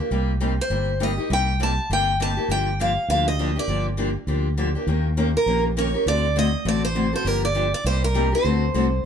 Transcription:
0.00 steel-string acoustic guitar A#3 D4 G4
0.11 fingered electric bass C2, steel-string acoustic guitar C3 G3 A#3 D#4 G4
0.40 steel-string acoustic guitar C3 G3 A#3 D#4 G4
0.61 steel-string acoustic guitar C5
0.70 fingered electric bass G1, steel-string acoustic guitar C3 G3 A#3 D#4 G4
1.00 steel-string acoustic guitar C3 G3 A#3 D#4 G4 D#5
1.18 steel-string acoustic guitar A#3 D#4 G4
1.30 fingered electric bass C2, steel-string acoustic guitar C3 G3 A#3 D#4 G4 G5
1.60 steel-string acoustic guitar C3 G3 A#3 D#4 G4 A5
1.90 fingered electric bass G1, steel-string acoustic guitar C3 G3 A#3 D#4 G4 G5
2.20 steel-string acoustic guitar C3 G3 A#3 D#4 G4 A5
2.37 steel-string acoustic guitar A#3 D#4 G4
2.48 fingered electric bass G1, steel-string acoustic guitar D3 F3 A#3 D4 G4 G5
2.80 steel-string acoustic guitar D3 F3 A#3 D4 G4 F5
3.08 fingered electric bass D2, steel-string acoustic guitar D3 F3 A#3 D4 G4 F5
3.28 steel-string acoustic guitar D#5
3.39 steel-string acoustic guitar D3 F3 A#3 D4 G4
3.56 steel-string acoustic guitar A#3 D4 G4 D5
3.67 fingered electric bass G1, steel-string acoustic guitar D3 F3 A#3 D4 G4
3.97 steel-string acoustic guitar D3 F3 A#3 D4 G4
4.27 fingered electric bass D2, steel-string acoustic guitar D3 F3 A#3 D4 G4
4.57 steel-string acoustic guitar D3 F3 A#3 D4 G4
4.75 steel-string acoustic guitar A#3 D4 G4
4.87 fingered electric bass D#2, steel-string acoustic guitar D#3 A#3 C#4 G4 A#4
5.17 steel-string acoustic guitar D#3 A#3 C#4 G4 A#4
5.37 steel-string acoustic guitar A#4
5.46 fingered electric bass A#1, steel-string acoustic guitar D#3 A#3 C#4 G4 A#4
5.77 steel-string acoustic guitar D#3 A#3 C#4 G4 A#4 C#5
5.94 steel-string acoustic guitar C#4 G4 A#4
6.06 fingered electric bass D2, steel-string acoustic guitar D3 A3 C4 F#4 A4 D5
6.36 steel-string acoustic guitar D3 A3 C4 F#4 A4 D#5
6.65 fingered electric bass A1, steel-string acoustic guitar D3 A3 C4 F#4 A4 D5
6.85 steel-string acoustic guitar C5
6.95 steel-string acoustic guitar D3 A3 C4 F#4 A4
7.13 steel-string acoustic guitar C4 F#4 A4 C5
7.25 fingered electric bass G1, steel-string acoustic guitar D3 F3 A#3 D4 G4 A#4
7.45 steel-string acoustic guitar D5
7.55 steel-string acoustic guitar D3 F3 A#3 D4 G4
7.74 steel-string acoustic guitar D5
7.84 fingered electric bass C2, steel-string acoustic guitar C3 G3 A#3 D#4 G4 C5
8.04 steel-string acoustic guitar A#4
8.14 steel-string acoustic guitar C3 G3 A#3 D#4 G4
8.32 steel-string acoustic guitar A#3 D#4 G4 C5
8.44 fingered electric bass D2, steel-string acoustic guitar D3 A3 C4 F#4 A4
8.74 fingered electric bass C2, steel-string acoustic guitar D3 A3 C4 F#4 A4

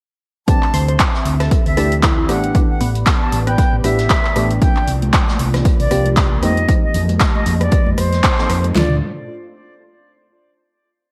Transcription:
0.48 synth stab E3 A3 C4 D4 G4, analog synth pad C4 G4 E5, flute A5, kick, closed hi-hat
0.63 clap, closed hi-hat
0.74 fingered electric bass D2, synth pluck C5, closed hi-hat, open hi-hat
0.88 synth pluck C5, closed hi-hat
0.99 kick, snare, clap, closed hi-hat
1.14 snare
1.25 fingered electric bass D2, closed hi-hat, open hi-hat
1.40 synth pluck A4, cross-stick, snare, closed hi-hat
1.51 kick, closed hi-hat
1.66 fingered electric bass D2, flute E5, open hi-hat
1.77 fingered electric bass D2, synth stab E3 A3 C4 D4 G4, synth pluck A4, cross-stick, closed hi-hat, open hi-hat
1.92 closed hi-hat
2.02 synth pluck E4, kick, snare, clap, closed hi-hat
2.18 synth pluck E4
2.28 fingered electric bass A1, synth stab E3 A3 B3 D4 G4, analog synth pad B3 D5, flute F#5, cross-stick, closed hi-hat, open hi-hat
2.44 closed hi-hat
2.54 synth stab E3 A3 B3 D4 G4, kick, closed hi-hat
2.70 flute F#5
2.81 fingered electric bass A1, synth pluck B3, closed hi-hat, open hi-hat
2.95 closed hi-hat
3.06 kick, snare, clap, closed hi-hat
3.21 flute A5
3.32 fingered electric bass A1, closed hi-hat, open hi-hat
3.47 synth pluck B3, flute G5, cross-stick, closed hi-hat
3.58 synth pluck B3, kick, closed hi-hat
3.73 fingered electric bass A1
3.84 fingered electric bass A1, synth stab E3 A3 B3 D4 G4, flute E5, cross-stick, closed hi-hat, open hi-hat
3.98 snare, closed hi-hat
4.09 kick, snare, clap, closed hi-hat
4.25 snare, clap
4.36 fingered electric bass A1, synth stab E3 A3 B3 D4 G4, cross-stick, closed hi-hat, open hi-hat
4.51 closed hi-hat
4.61 synth stab F3 A#3 C4 D4 G4, analog synth pad A#3 F4 D5, flute G5, kick, closed hi-hat
4.76 clap, closed hi-hat
4.88 fingered electric bass C2, closed hi-hat, open hi-hat
5.02 closed hi-hat, high conga
5.13 kick, snare, clap, closed hi-hat
5.28 snare, high conga
5.39 fingered electric bass C2, closed hi-hat, open hi-hat
5.54 cross-stick, snare, closed hi-hat, low conga
5.65 kick, closed hi-hat
5.80 fingered electric bass C2, flute D5, open hi-hat
5.91 fingered electric bass C2, synth stab F3 A#3 C4 D4 G4, cross-stick, closed hi-hat, open hi-hat
6.06 closed hi-hat, high conga
6.17 kick, snare, clap, closed hi-hat
6.42 fingered electric bass F2, synth stab F3 A#3 C4 D#4 G4, analog synth pad G4 D#5, flute D#5, cross-stick, closed hi-hat, open hi-hat, high conga
6.57 closed hi-hat
6.68 synth stab F3 A#3 C4 D#4 G4, kick, closed hi-hat
6.83 flute D#5
6.94 fingered electric bass F2, closed hi-hat, open hi-hat, low conga
7.09 closed hi-hat, high conga
7.20 kick, snare, clap, closed hi-hat
7.35 flute D#5, high conga
7.46 fingered electric bass F2, closed hi-hat, open hi-hat, low conga
7.60 flute D5, cross-stick, closed hi-hat, low conga
7.71 kick, closed hi-hat
7.86 fingered electric bass F2, high conga
7.98 fingered electric bass F2, flute C5, cross-stick, closed hi-hat, open hi-hat
8.13 snare, closed hi-hat
8.23 kick, snare, clap, closed hi-hat
8.38 synth stab F3 A#3 C4 D#4 A4, snare, clap
8.49 fingered electric bass F2, cross-stick, closed hi-hat, open hi-hat
8.64 closed hi-hat, high conga
8.75 fingered electric bass D2, synth stab A3 D4 F4, flute D5, snare, floor tom

